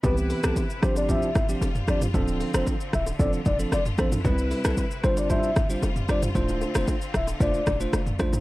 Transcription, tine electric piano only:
\new Staff \with { instrumentName = "Tine electric piano" } { \time 4/4 \key c \major \tempo 4 = 114 <e b c' g'>8. <e b c' g'>16 r8 <f c' d' g'>8 <f c' d' g'>8 r16 <f c' d' g'>16 r8 <f c' d' g'>8 | <f c' d' a'>8. <f c' d' a'>16 r4 <f c' d' a'>8 r16 <f c' d' a'>16 r8 <f c' d' a'>8 | <g c' e' b'>8. <g c' e' b'>16 r8 <g d' f' c''>8 <g d' f' c''>8 r16 <g d' f' c''>16 r8 <g d' f' c''>8 | <a d' f' c''>8. <a d' f' c''>16 r4 <a d' f' c''>8 r16 <a d' f' c''>16 r8 <a d' f' c''>8 | }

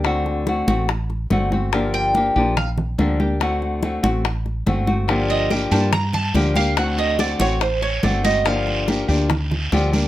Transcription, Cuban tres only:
\new Staff \with { instrumentName = "Cuban tres" } { \time 4/4 \key g \minor \tempo 4 = 143 r1 | r8 g''4. f''8 r4. | r1 | r8 ees''8 g''8 a''8 bes''8 a''8 g''8 f''8 |
fis''8 ees''8 d''8 cis''8 c''8 cis''8 d''8 ees''8 | f''2. r4 | }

